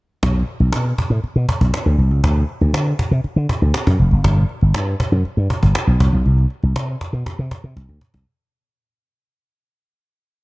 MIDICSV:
0, 0, Header, 1, 4, 480
1, 0, Start_track
1, 0, Tempo, 502513
1, 217, Time_signature, 4, 2, 24, 8
1, 9965, End_track
2, 0, Start_track
2, 0, Title_t, "Slap bass"
2, 0, Program_c, 0, 36
2, 218, Note_on_c, 0, 35, 94
2, 396, Note_off_c, 0, 35, 0
2, 574, Note_on_c, 0, 35, 82
2, 664, Note_off_c, 0, 35, 0
2, 695, Note_on_c, 0, 47, 89
2, 874, Note_off_c, 0, 47, 0
2, 1052, Note_on_c, 0, 45, 75
2, 1142, Note_off_c, 0, 45, 0
2, 1297, Note_on_c, 0, 47, 80
2, 1385, Note_off_c, 0, 47, 0
2, 1537, Note_on_c, 0, 35, 87
2, 1626, Note_off_c, 0, 35, 0
2, 1776, Note_on_c, 0, 38, 76
2, 1865, Note_off_c, 0, 38, 0
2, 1893, Note_on_c, 0, 36, 87
2, 2014, Note_off_c, 0, 36, 0
2, 2014, Note_on_c, 0, 37, 86
2, 2103, Note_off_c, 0, 37, 0
2, 2136, Note_on_c, 0, 38, 90
2, 2314, Note_off_c, 0, 38, 0
2, 2495, Note_on_c, 0, 38, 84
2, 2585, Note_off_c, 0, 38, 0
2, 2610, Note_on_c, 0, 50, 76
2, 2790, Note_off_c, 0, 50, 0
2, 2974, Note_on_c, 0, 48, 88
2, 3064, Note_off_c, 0, 48, 0
2, 3212, Note_on_c, 0, 50, 100
2, 3303, Note_off_c, 0, 50, 0
2, 3457, Note_on_c, 0, 38, 88
2, 3546, Note_off_c, 0, 38, 0
2, 3695, Note_on_c, 0, 42, 81
2, 3785, Note_off_c, 0, 42, 0
2, 3815, Note_on_c, 0, 29, 85
2, 3905, Note_off_c, 0, 29, 0
2, 3937, Note_on_c, 0, 30, 79
2, 4026, Note_off_c, 0, 30, 0
2, 4052, Note_on_c, 0, 31, 117
2, 4232, Note_off_c, 0, 31, 0
2, 4415, Note_on_c, 0, 31, 98
2, 4505, Note_off_c, 0, 31, 0
2, 4538, Note_on_c, 0, 43, 90
2, 4716, Note_off_c, 0, 43, 0
2, 4890, Note_on_c, 0, 42, 89
2, 4982, Note_off_c, 0, 42, 0
2, 5131, Note_on_c, 0, 43, 84
2, 5223, Note_off_c, 0, 43, 0
2, 5375, Note_on_c, 0, 31, 77
2, 5465, Note_off_c, 0, 31, 0
2, 5610, Note_on_c, 0, 35, 79
2, 5702, Note_off_c, 0, 35, 0
2, 5733, Note_on_c, 0, 36, 93
2, 5824, Note_off_c, 0, 36, 0
2, 5857, Note_on_c, 0, 35, 86
2, 5946, Note_off_c, 0, 35, 0
2, 5978, Note_on_c, 0, 36, 107
2, 6157, Note_off_c, 0, 36, 0
2, 6336, Note_on_c, 0, 36, 78
2, 6426, Note_off_c, 0, 36, 0
2, 6455, Note_on_c, 0, 48, 88
2, 6635, Note_off_c, 0, 48, 0
2, 6810, Note_on_c, 0, 47, 77
2, 6902, Note_off_c, 0, 47, 0
2, 7058, Note_on_c, 0, 48, 89
2, 7147, Note_off_c, 0, 48, 0
2, 7297, Note_on_c, 0, 48, 90
2, 7386, Note_off_c, 0, 48, 0
2, 7415, Note_on_c, 0, 36, 76
2, 7505, Note_off_c, 0, 36, 0
2, 7533, Note_on_c, 0, 38, 86
2, 7624, Note_off_c, 0, 38, 0
2, 7776, Note_on_c, 0, 36, 91
2, 7866, Note_off_c, 0, 36, 0
2, 9965, End_track
3, 0, Start_track
3, 0, Title_t, "Cajon"
3, 218, Note_on_c, 9, 36, 117
3, 314, Note_off_c, 9, 36, 0
3, 338, Note_on_c, 9, 38, 27
3, 433, Note_off_c, 9, 38, 0
3, 453, Note_on_c, 9, 38, 29
3, 549, Note_off_c, 9, 38, 0
3, 573, Note_on_c, 9, 38, 32
3, 668, Note_off_c, 9, 38, 0
3, 693, Note_on_c, 9, 38, 84
3, 789, Note_off_c, 9, 38, 0
3, 815, Note_on_c, 9, 38, 24
3, 911, Note_off_c, 9, 38, 0
3, 938, Note_on_c, 9, 38, 33
3, 940, Note_on_c, 9, 36, 84
3, 1034, Note_off_c, 9, 38, 0
3, 1035, Note_off_c, 9, 36, 0
3, 1061, Note_on_c, 9, 38, 31
3, 1157, Note_off_c, 9, 38, 0
3, 1183, Note_on_c, 9, 38, 47
3, 1278, Note_off_c, 9, 38, 0
3, 1303, Note_on_c, 9, 38, 22
3, 1398, Note_off_c, 9, 38, 0
3, 1420, Note_on_c, 9, 36, 88
3, 1516, Note_off_c, 9, 36, 0
3, 1539, Note_on_c, 9, 36, 73
3, 1635, Note_off_c, 9, 36, 0
3, 1660, Note_on_c, 9, 38, 90
3, 1755, Note_off_c, 9, 38, 0
3, 1775, Note_on_c, 9, 38, 30
3, 1871, Note_off_c, 9, 38, 0
3, 1903, Note_on_c, 9, 38, 33
3, 1999, Note_off_c, 9, 38, 0
3, 2017, Note_on_c, 9, 38, 27
3, 2112, Note_off_c, 9, 38, 0
3, 2138, Note_on_c, 9, 36, 110
3, 2233, Note_off_c, 9, 36, 0
3, 2259, Note_on_c, 9, 38, 25
3, 2354, Note_off_c, 9, 38, 0
3, 2376, Note_on_c, 9, 38, 34
3, 2472, Note_off_c, 9, 38, 0
3, 2493, Note_on_c, 9, 38, 31
3, 2589, Note_off_c, 9, 38, 0
3, 2619, Note_on_c, 9, 38, 85
3, 2714, Note_off_c, 9, 38, 0
3, 2740, Note_on_c, 9, 38, 23
3, 2836, Note_off_c, 9, 38, 0
3, 2857, Note_on_c, 9, 38, 33
3, 2858, Note_on_c, 9, 36, 84
3, 2953, Note_off_c, 9, 36, 0
3, 2953, Note_off_c, 9, 38, 0
3, 2979, Note_on_c, 9, 38, 27
3, 3074, Note_off_c, 9, 38, 0
3, 3096, Note_on_c, 9, 38, 46
3, 3192, Note_off_c, 9, 38, 0
3, 3220, Note_on_c, 9, 38, 20
3, 3315, Note_off_c, 9, 38, 0
3, 3337, Note_on_c, 9, 36, 78
3, 3432, Note_off_c, 9, 36, 0
3, 3457, Note_on_c, 9, 38, 22
3, 3553, Note_off_c, 9, 38, 0
3, 3574, Note_on_c, 9, 38, 93
3, 3669, Note_off_c, 9, 38, 0
3, 3696, Note_on_c, 9, 36, 80
3, 3792, Note_off_c, 9, 36, 0
3, 3815, Note_on_c, 9, 38, 32
3, 3910, Note_off_c, 9, 38, 0
3, 3929, Note_on_c, 9, 38, 28
3, 4024, Note_off_c, 9, 38, 0
3, 4054, Note_on_c, 9, 36, 124
3, 4150, Note_off_c, 9, 36, 0
3, 4176, Note_on_c, 9, 38, 27
3, 4271, Note_off_c, 9, 38, 0
3, 4291, Note_on_c, 9, 38, 30
3, 4387, Note_off_c, 9, 38, 0
3, 4406, Note_on_c, 9, 38, 33
3, 4502, Note_off_c, 9, 38, 0
3, 4532, Note_on_c, 9, 38, 82
3, 4627, Note_off_c, 9, 38, 0
3, 4657, Note_on_c, 9, 38, 22
3, 4752, Note_off_c, 9, 38, 0
3, 4774, Note_on_c, 9, 38, 31
3, 4775, Note_on_c, 9, 36, 90
3, 4870, Note_off_c, 9, 38, 0
3, 4871, Note_off_c, 9, 36, 0
3, 4896, Note_on_c, 9, 38, 31
3, 4992, Note_off_c, 9, 38, 0
3, 5017, Note_on_c, 9, 38, 45
3, 5113, Note_off_c, 9, 38, 0
3, 5139, Note_on_c, 9, 38, 19
3, 5234, Note_off_c, 9, 38, 0
3, 5255, Note_on_c, 9, 36, 79
3, 5350, Note_off_c, 9, 36, 0
3, 5375, Note_on_c, 9, 36, 74
3, 5470, Note_off_c, 9, 36, 0
3, 5493, Note_on_c, 9, 38, 91
3, 5589, Note_off_c, 9, 38, 0
3, 5610, Note_on_c, 9, 38, 28
3, 5706, Note_off_c, 9, 38, 0
3, 5735, Note_on_c, 9, 36, 92
3, 5831, Note_off_c, 9, 36, 0
3, 5855, Note_on_c, 9, 38, 29
3, 5951, Note_off_c, 9, 38, 0
3, 5976, Note_on_c, 9, 38, 44
3, 6071, Note_off_c, 9, 38, 0
3, 6098, Note_on_c, 9, 38, 27
3, 6193, Note_off_c, 9, 38, 0
3, 6213, Note_on_c, 9, 38, 29
3, 6308, Note_off_c, 9, 38, 0
3, 6330, Note_on_c, 9, 38, 29
3, 6425, Note_off_c, 9, 38, 0
3, 6456, Note_on_c, 9, 38, 81
3, 6551, Note_off_c, 9, 38, 0
3, 6574, Note_on_c, 9, 38, 25
3, 6670, Note_off_c, 9, 38, 0
3, 6697, Note_on_c, 9, 36, 76
3, 6697, Note_on_c, 9, 38, 31
3, 6793, Note_off_c, 9, 36, 0
3, 6793, Note_off_c, 9, 38, 0
3, 6822, Note_on_c, 9, 38, 30
3, 6917, Note_off_c, 9, 38, 0
3, 6938, Note_on_c, 9, 36, 86
3, 6939, Note_on_c, 9, 38, 48
3, 7033, Note_off_c, 9, 36, 0
3, 7035, Note_off_c, 9, 38, 0
3, 7061, Note_on_c, 9, 38, 19
3, 7156, Note_off_c, 9, 38, 0
3, 7177, Note_on_c, 9, 36, 88
3, 7272, Note_off_c, 9, 36, 0
3, 7300, Note_on_c, 9, 38, 24
3, 7395, Note_off_c, 9, 38, 0
3, 7419, Note_on_c, 9, 38, 52
3, 7515, Note_off_c, 9, 38, 0
3, 7534, Note_on_c, 9, 38, 30
3, 7629, Note_off_c, 9, 38, 0
3, 7654, Note_on_c, 9, 36, 66
3, 7750, Note_off_c, 9, 36, 0
3, 7774, Note_on_c, 9, 36, 72
3, 7870, Note_off_c, 9, 36, 0
3, 9965, End_track
4, 0, Start_track
4, 0, Title_t, "Muted slap bass strokes"
4, 1180, Note_on_c, 9, 29, 43
4, 1276, Note_off_c, 9, 29, 0
4, 3097, Note_on_c, 9, 29, 44
4, 3193, Note_off_c, 9, 29, 0
4, 5010, Note_on_c, 9, 29, 45
4, 5106, Note_off_c, 9, 29, 0
4, 9965, End_track
0, 0, End_of_file